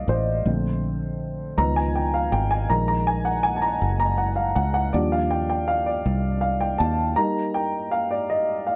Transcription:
Already playing: D#3 G3 A#3 D5 D#5 F5
0.08 A1 C5
0.45 A#1 D3 A3 C4
1.57 C#2 D#3 F3 B3 A#5
1.76 G#5
1.95 G5
2.14 F5
2.32 G#1 G5
2.51 G#5
2.69 A#1 D#3 G#3 A#3 A#5
2.88 A#5
3.07 G#5
3.25 F#5
3.43 G#5
3.56 A5
3.62 A#5
3.82 F#1
4.00 A#5
4.18 F#5
4.36 F5
4.56 C#2 F#5
4.74 F#5
4.93 D#2 F3 G3 D4 D5
5.12 F5
5.31 G5
5.49 G5
5.68 F5
5.86 D5
6.06 C2
6.41 F5
6.61 G5
6.78 D#2 A5
7.16 G3 A#3 D#4 A#5
7.54 G5
7.91 F5
8.11 D5
8.30 D#5
8.67 F5

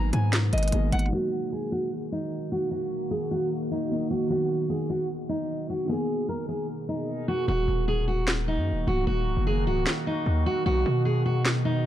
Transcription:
Already playing: G#1 B2 D#3 G#3 A#3 B3 G#4 A#4 A#5
0.13 G#2 G#5, closed hi-hat
0.33 snare, clap, closed hi-hat
0.53 G#1 D#5, closed hi-hat
0.58 closed hi-hat
0.63 closed hi-hat
0.68 D#3, closed hi-hat
0.72 G#1 A#3 B3 G#4, closed hi-hat
0.92 G#1 F#5, closed hi-hat, open hi-hat
0.99 closed hi-hat
1.06 D#3, closed hi-hat
1.11 D#3 F#3 A#3 F#4
1.15 F#4
1.52 G#4
1.72 F#4
2.12 D#4
2.52 F#4
2.71 F#4
3.11 G#4
3.31 F#4
3.71 D#4
3.89 D#3 F#3 A#3 D#4
4.10 F#4
4.27 D#3 F#3 B3 F#4
4.31 B3 F#4
4.69 G#4
4.90 F#4
5.29 D#4
5.70 F#4
5.86 B2 D#3 A#3 G#4 A#4
5.90 B3 G#4
6.29 A#4
6.49 G#4
6.89 D#4
7.28 F#4
7.48 D#1 D#3 A#3 F#4
7.68 D#1
7.88 G#4
8.08 F#4
8.28 snare, clap
8.48 D#4
8.57 F#2
8.72 D#1
8.87 C#1 F#4
9.07 D#1 F#4
9.27 C#1
9.37 F#1
9.47 G#4
9.67 C#1 F#4
9.87 snare, clap
10.07 D#4
10.26 D#2
10.46 F#4
10.66 B1 B3 F#4
10.86 B2
11.05 G#4
11.26 F#4
11.45 snare, clap
11.65 D#4

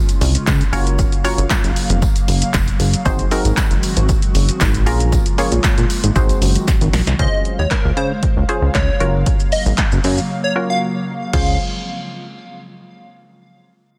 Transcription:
Already playing: C#3 G#3 C#4 F4
0.09 closed hi-hat, tambourine, shaker
0.21 C2, open hi-hat, tambourine, shaker
0.35 closed hi-hat, shaker
0.47 C#2, kick, snare, clap, tambourine, shaker
0.61 closed hi-hat, shaker
0.73 F#1 F#3 A#3 C#4 F4 F#4 A#4 C#5 F5, open hi-hat, tambourine, shaker
0.87 closed hi-hat, shaker
0.99 kick, tambourine, shaker
1.12 closed hi-hat, shaker
1.24 C#4 F4 F#4 A#4 C#5, open hi-hat, tambourine, shaker
1.38 F#1, closed hi-hat, shaker
1.50 kick, snare, clap, tambourine, shaker
1.64 F#1, closed hi-hat, tambourine, shaker
1.76 open hi-hat, tambourine, shaker
1.90 F1, closed hi-hat, shaker
2.02 kick, tambourine, shaker
2.16 closed hi-hat, tambourine, shaker
2.28 F#1, open hi-hat, tambourine, shaker
2.42 closed hi-hat, shaker
2.54 F1, kick, snare, clap, tambourine, shaker
2.68 closed hi-hat, shaker
2.80 F#1, open hi-hat, tambourine, shaker
2.94 closed hi-hat, shaker
3.05 G#1 D#3 G#3 C4 D#4 F#4 G#4 C5, kick, tambourine, shaker
3.19 closed hi-hat, shaker
3.31 C4 D#4 F#4 G#4 A#4, open hi-hat, tambourine, shaker
3.45 G#1, closed hi-hat, tambourine, shaker
3.57 kick, snare, clap, tambourine, shaker
3.71 F#1, closed hi-hat, shaker
3.83 open hi-hat, tambourine, shaker
3.97 G#1, closed hi-hat, shaker
4.09 kick, tambourine, shaker
4.22 closed hi-hat, shaker
4.35 F#1, open hi-hat, tambourine, shaker
4.49 closed hi-hat, shaker
4.61 G#1, kick, snare, clap, tambourine, shaker
4.74 closed hi-hat, shaker
4.86 A#1 C#3 F3 G#3 A#3 C#4 F4 G#4 A#4, open hi-hat, tambourine, shaker
5.00 closed hi-hat, shaker
5.12 kick, tambourine, shaker
5.26 closed hi-hat, shaker
5.38 A#3 C#4 F4 G#4 C#5, open hi-hat, tambourine, shaker
5.52 A#1, closed hi-hat, shaker
5.64 kick, snare, clap, tambourine, shaker
5.78 A#1, closed hi-hat, shaker
5.90 open hi-hat, tambourine, shaker
6.04 G#1, closed hi-hat, shaker
6.16 G#1 D#3 F#3 C4 D#4 F#4 G#4 C5, kick, tambourine, shaker
6.29 closed hi-hat, tambourine, shaker
6.42 F#1, open hi-hat, tambourine, shaker
6.55 closed hi-hat, tambourine, shaker
6.68 kick, snare, tambourine, shaker
6.81 G#1, closed hi-hat, shaker
6.93 A#1, snare, open hi-hat, tambourine, shaker
7.07 C2, snare, closed hi-hat, shaker
7.19 C#2 C#3 G#3 C#4 F4 G#4 C5 D#5 F5, kick, closed hi-hat
7.45 closed hi-hat
7.59 D#2 C#5
7.71 A#4, kick, snare, clap, closed hi-hat
7.85 C#2
7.97 C#3 C5, closed hi-hat
8.23 kick, closed hi-hat
8.37 C#2
8.49 C#4 F4 G#4 C5, closed hi-hat
8.62 C#2
8.75 C#2 C#5, kick, snare, clap, closed hi-hat
9.00 F#1 F#3 A#3 C#4 F4 F#4 A#4, closed hi-hat
9.26 kick, closed hi-hat, shaker
9.40 shaker
9.52 D#5, open hi-hat, shaker
9.66 G#1, shaker
9.78 kick, snare, clap, closed hi-hat, shaker
9.92 F#1, shaker
10.04 F#2, open hi-hat, shaker
10.18 shaker
10.44 C#5
10.56 C#4 F4 F#4 A#4
10.70 F5
11.33 C#2 C#3 F3 G#3 C4 C#4 F4 G#4 C5 F5, kick, crash

